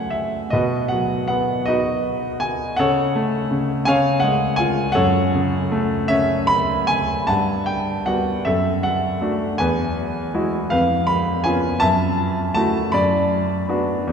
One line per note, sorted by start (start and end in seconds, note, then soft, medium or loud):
0.00 0.49 F#2 soft
0.00 0.54 C#3 soft
0.00 0.49 F#3 soft
0.00 0.49 A3 soft
0.00 0.55 A4 soft
0.00 0.54 C#5 soft
0.00 0.55 F#5 medium
0.00 0.54 G#5 medium
0.10 0.53 E5 medium
0.50 2.75 B2 medium
0.50 1.64 F#4 medium
0.50 1.65 B4 medium
0.50 0.88 D#5 medium
0.88 2.38 F#3 soft
0.88 1.26 F#5 medium
1.28 2.75 B3 soft
1.28 1.68 F#5 medium
1.66 2.75 D#4 medium
1.66 2.75 F#4 medium
1.66 2.75 B4 medium
1.66 2.43 D#5 medium
2.40 2.79 G#5 medium
2.77 3.49 C#3 medium
2.77 3.84 A4 medium
2.77 3.84 C#5 medium
2.77 3.82 F#5 medium
3.15 3.85 A3 medium
3.51 3.86 C#3 medium
3.85 4.93 C#3 medium
3.85 4.93 C#5 medium
3.85 4.93 F5 medium
3.85 4.23 G#5 medium
4.20 4.94 G#3 medium
4.20 4.59 F#5 medium
4.56 4.95 F4 medium
4.56 4.96 G#5 medium
4.92 7.25 F#2 medium
4.92 6.85 A4 medium
4.92 6.84 C#5 medium
4.92 6.83 F#5 medium
5.34 6.86 C#3 medium
5.72 7.25 A3 medium
6.08 7.25 C#4 medium
6.08 6.50 E5 medium
6.47 6.85 B5 loud
6.87 7.29 G#5 medium
7.27 8.42 G2 medium
7.27 8.04 F#5 medium
7.27 7.69 A5 medium
7.66 8.07 G5 medium
8.06 8.44 G3 soft
8.06 8.44 B3 soft
8.06 8.44 F#4 soft
8.06 8.46 F#5 medium
8.45 9.56 F#2 medium
8.45 9.56 A4 medium
8.45 8.84 E5 medium
8.83 9.62 F#5 medium
9.21 9.58 A3 soft
9.21 9.58 D4 soft
9.21 9.59 F#4 soft
9.58 10.69 E2 medium
9.58 10.68 B4 medium
9.58 10.75 G#5 medium
10.34 10.70 G#3 soft
10.34 10.71 E4 soft
10.34 10.71 F#4 soft
10.70 11.79 F2 medium
10.70 11.78 B4 medium
10.70 11.05 F5 medium
11.07 11.42 B5 medium
11.44 11.81 B3 soft
11.44 11.81 C#4 soft
11.44 11.82 F4 soft
11.44 11.83 G#5 medium
11.80 12.90 F#2 medium
11.80 12.89 E5 medium
11.80 12.53 A5 medium
12.55 12.92 A3 soft
12.55 12.93 E4 soft
12.55 12.93 F#4 medium
12.55 12.94 A5 medium
12.92 14.03 F#2 medium
12.92 14.12 D5 medium
12.92 14.12 B5 medium
13.69 14.06 B3 soft
13.69 14.06 D4 soft
13.69 14.06 F#4 soft
14.07 14.12 E2 medium